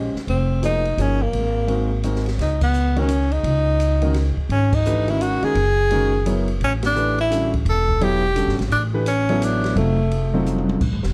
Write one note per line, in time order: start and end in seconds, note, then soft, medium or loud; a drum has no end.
0.00 0.11 A#1 medium
0.00 0.13 G#3 medium
0.00 0.13 C#4 medium
0.00 0.13 G4 soft
0.00 0.13 C5 soft
0.00 0.14 D#5 medium
0.15 muted upright bass stroke soft
0.15 snare soft
0.27 0.94 F1 medium
0.27 0.61 C4 medium
0.27 ride soft
0.62 0.83 F3 medium
0.62 0.83 A#3 medium
0.62 0.83 D#4 medium
0.62 1.03 D#4 loud
0.62 0.83 G#4 medium
0.62 0.83 C5 medium
0.62 hi-hat pedal medium
0.62 ride medium
0.85 ride soft
0.97 1.31 G1 medium
0.97 1.19 F3 medium
0.97 1.19 A#3 medium
0.97 1.24 C#4 medium
0.97 1.19 D#4 soft
0.97 1.19 G#4 medium
0.97 1.19 C#5 medium
0.97 hi-hat pedal medium
0.97 ride medium
1.22 2.05 A#3 medium
1.33 2.35 G#1 medium
1.33 ride medium
1.68 1.88 G#3 medium
1.68 1.89 C4 medium
1.68 1.89 D#4 medium
1.68 1.89 F#4 medium
1.68 1.89 A#4 medium
1.68 ride medium
2.03 2.24 G#3 medium
2.03 2.24 C4 medium
2.03 2.24 D#4 medium
2.03 2.24 F#4 medium
2.03 2.24 A#4 medium
2.03 hi-hat pedal medium
2.03 ride medium
2.15 snare soft
2.26 snare soft
2.26 ride soft
2.38 3.40 C#2 medium
2.38 2.61 D#4 medium
2.38 snare soft
2.38 ride medium
2.61 3.01 B3 medium
2.61 kick medium
2.61 crash medium
2.73 hi-hat pedal medium
2.96 3.08 D#3 medium
2.96 3.08 G#3 medium
2.96 3.08 C#4 medium
2.96 3.33 C#4 medium
2.96 3.08 F#4 medium
2.96 3.09 A#4 medium
2.96 ride soft
3.09 hi-hat pedal medium
3.09 ride medium
3.32 4.37 D#4 medium
3.32 ride soft
3.44 4.33 C#2 medium
3.44 ride medium
3.80 hi-hat pedal soft
3.80 ride medium
4.02 4.14 D#3 medium
4.02 4.14 G#3 medium
4.02 4.14 C#4 medium
4.02 4.14 F#4 medium
4.02 4.14 A#4 medium
4.02 ride soft
4.14 snare soft
4.14 ride medium
4.37 muted upright bass stroke soft
4.37 kick medium
4.49 5.38 G#1 medium
4.49 4.76 C#4 medium
4.49 ride medium
4.73 5.12 D#4 loud
4.73 kick medium
4.73 crash medium
4.85 5.06 E3 medium
4.85 5.06 A3 medium
4.85 5.06 D4 medium
4.85 5.06 G4 medium
4.85 5.06 B4 medium
4.85 hi-hat pedal medium
5.08 5.38 D#3 medium
5.08 5.38 G#3 medium
5.08 5.39 C#4 medium
5.08 5.24 E4 medium
5.08 5.39 F#4 medium
5.08 5.39 A#4 medium
5.08 ride soft
5.21 5.45 F#4 medium
5.21 hi-hat pedal medium
5.21 ride medium
5.42 5.54 D#3 medium
5.42 5.54 G#3 medium
5.42 5.54 C#4 medium
5.42 5.55 F#4 medium
5.42 6.49 G#4 loud
5.42 5.54 A#4 medium
5.42 muted upright bass stroke soft
5.42 ride soft
5.55 6.56 F#1 medium
5.55 ride medium
5.91 6.11 D#3 medium
5.91 6.11 G#3 medium
5.91 6.11 C#4 medium
5.91 6.11 F#4 medium
5.91 6.12 A#4 medium
5.91 ride medium
6.26 6.46 F#3 medium
6.26 6.46 B3 medium
6.26 6.46 E4 medium
6.26 6.46 A#4 medium
6.26 6.47 C#5 medium
6.26 hi-hat pedal medium
6.26 ride medium
6.48 ride soft
6.60 7.62 A1 medium
6.60 6.73 C#4 medium
6.60 ride medium
6.83 7.17 D4 loud
6.83 snare medium
6.83 ride medium
6.95 7.16 E3 medium
6.95 7.16 A3 medium
6.95 7.16 D4 medium
6.95 7.16 G4 medium
6.95 7.16 B4 medium
6.95 hi-hat pedal medium
7.18 7.52 E4 medium
7.18 ride soft
7.30 7.51 D3 medium
7.30 7.51 G3 medium
7.30 7.51 C#4 medium
7.30 7.51 F#4 medium
7.30 7.51 A4 medium
7.30 hi-hat pedal medium
7.30 ride medium
7.54 kick medium
7.54 ride soft
7.65 8.43 E1 medium
7.65 8.05 A4 loud
7.65 ride medium
7.89 kick soft
8.01 8.21 F#3 medium
8.01 8.21 B3 medium
8.01 8.21 E4 medium
8.01 8.60 G4 loud
8.01 8.22 A4 medium
8.01 8.22 C#5 medium
8.01 ride medium
8.35 8.56 D3 medium
8.35 8.56 G3 medium
8.35 8.56 C#4 medium
8.35 8.56 F#4 medium
8.35 8.57 A4 medium
8.35 hi-hat pedal medium
8.35 ride medium
8.47 8.58 G1 medium
8.47 snare soft
8.59 8.70 G#1 medium
8.59 snare soft
8.59 ride soft
8.70 9.72 A1 medium
8.70 8.82 D4 medium
8.70 ride medium
8.93 9.05 E3 medium
8.93 9.05 A3 medium
8.93 9.05 D4 medium
8.93 9.05 G4 medium
8.93 9.05 B4 medium
9.06 9.46 C#4 loud
9.06 hi-hat pedal medium
9.06 ride medium
9.29 9.74 F#3 medium
9.29 9.74 B3 medium
9.29 9.74 E4 medium
9.29 9.74 A4 medium
9.29 9.74 C#5 medium
9.29 ride soft
9.42 9.77 D4 medium
9.42 hi-hat pedal medium
9.42 ride medium
9.64 snare soft
9.64 ride soft
9.75 10.77 F1 medium
9.75 9.96 F#3 medium
9.75 10.43 A3 medium
9.75 9.96 C4 medium
9.75 9.96 D#4 medium
9.75 9.96 F4 medium
9.75 9.96 A4 medium
9.75 ride medium
10.11 ride medium
10.33 10.79 F#3 medium
10.33 10.79 C4 medium
10.33 10.79 D#4 medium
10.33 10.79 F4 medium
10.33 10.79 A4 medium
10.46 hi-hat pedal medium
10.46 high tom medium
10.58 high tom medium
10.69 high tom medium
10.81 10.92 A#1 medium
10.81 kick medium
10.81 crash medium
10.92 11.03 G#1 medium
11.03 11.13 F1 medium
11.03 snare soft